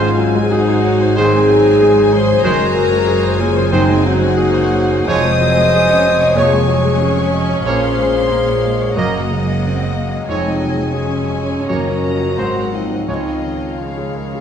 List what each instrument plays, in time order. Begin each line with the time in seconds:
Already playing: double bass section G#1, grand piano G#2, cello section G#2, viola section G#3, clarinet C#4, french horn section F4, violin section C5 F5 G#5
0.01 grand piano G#3
0.18 grand piano F#3
0.35 grand piano G#3, clarinet F4, french horn section G#4, violin section G#5
0.51 clarinet D#4, viola section D#4, french horn section F#4, grand piano G#4, violin section F#5
0.68 grand piano C5
0.85 grand piano C#5
1.01 grand piano C5
1.16 trombone section D#3 G#3, grand piano D#3, viola section C4, clarinet D#4, french horn section G#4, trumpet C5, violin section G#5
1.33 grand piano G#3
1.49 grand piano F#3
1.65 grand piano G#3
1.81 viola section G#3, grand piano G#4
1.98 grand piano C5
2.12 viola section F3, clarinet G#4, french horn section C5, grand piano C#5, violin section C6
2.28 grand piano C5
2.44 double bass section F#1, cello section F#2, grand piano F#2, trombone section D#3 G#3, viola section F#3, clarinet F#4, french horn section A#4, trumpet C5, violin section A#5
2.59 grand piano G#3
2.75 grand piano F#3
2.91 grand piano G#3
3.07 viola section G#3, grand piano G#4
3.23 grand piano C5
3.39 viola section A#3, clarinet F4, french horn section G#4, grand piano C#5, violin section G#5
3.57 grand piano C5
3.72 grand piano F#2, trombone section D#3 G#3, clarinet C4, viola section C4, french horn section D#4, trumpet C5, violin section D#5
3.89 grand piano G#3
4.04 grand piano F#3, clarinet D#4, french horn section F#4, violin section F#5
4.21 grand piano G#3
4.37 viola section A#3, grand piano G#4
4.54 grand piano C5
4.73 grand piano C#5
4.91 grand piano C5
5.08 double bass section F1, grand piano F2, cello section F2, trombone section F3 G#3, viola section G#3, clarinet C5, trumpet C#5, violin section C#5 G#5 D#6, french horn section D#5
5.25 grand piano G#3
5.41 grand piano F#3, viola section C4
5.57 grand piano G#3
5.73 viola section C#4, grand piano G#4
5.89 grand piano C#5
6.05 viola section C4, grand piano D#5
6.20 grand piano C#5
6.36 grand piano F2, trombone section F3 G#3, viola section A#3, clarinet G#4, french horn section C#5, trumpet C#5, violin section C#6
6.53 grand piano G#3
6.68 grand piano F#3, viola section G#3
6.85 grand piano G#3
7.00 viola section C#4, grand piano G#4
7.18 grand piano C#5
7.33 grand piano D#5
7.49 grand piano C#5
7.64 double bass section A#1, cello section A#2, grand piano A#2, trombone section F3 A#3, clarinet G#4, french horn section C5, trumpet C#5, violin section F5 C6
7.82 grand piano A#3
7.98 grand piano G#3
8.14 grand piano A#3
8.31 viola section A#3, grand piano A#4
8.48 grand piano C#5
8.64 viola section G#3, grand piano D#5
8.81 grand piano C#5
8.96 double bass section F#1, grand piano F#2, cello section F#2, trombone section F#3 A#3, viola section A#3, clarinet F#4, french horn section A#4, violin section D#5 F#5 A#5, trumpet D#5
9.15 grand piano A#3
9.30 grand piano G#3
9.46 grand piano A#3
9.62 viola section C4, grand piano A#4
9.78 grand piano D#5
9.96 viola section A#3, grand piano F5
10.12 grand piano D#5
10.28 double bass section F1, grand piano F2, cello section F2, trombone section F3 G#3, viola section G#3, clarinet C4, french horn section D#4, violin section C#5 D#5 G#5, trumpet C#5
10.46 grand piano G#3
10.61 grand piano F#3
10.78 grand piano G#3
10.94 clarinet G#3, french horn section C#4, viola section C#4, grand piano G#4, violin section C#5
11.13 grand piano C#5
11.30 grand piano D#5
11.51 grand piano C#5
11.68 double bass section F#1, cello section F#2, grand piano F#2, trombone section D#3 A#3, clarinet F#4, french horn section A#4, trumpet C#5, violin section D#5 A#5
11.87 grand piano F#3
12.03 grand piano F3
12.20 grand piano F#3
12.37 double bass section G#1, cello section G#2, grand piano G#2, trombone section F#3 G#3, viola section C4, trumpet C5, violin section C5 F#5
12.55 grand piano F#3
12.72 grand piano F3, viola section A#3, clarinet C4, french horn section D#4, violin section D#5
12.90 grand piano F#3
13.07 double bass section C#2, grand piano C#2, cello section C#3, trombone section F3 G#3, viola section G#3, clarinet C4, french horn section D#4, violin section C#5 D#5 F5, trumpet C#5
13.26 grand piano F3
13.44 grand piano D#3
13.62 grand piano F3
13.78 clarinet G#3, french horn section C#4, grand piano F4, violin section C#5
13.97 grand piano G#4
14.17 grand piano A#4
14.35 grand piano G#4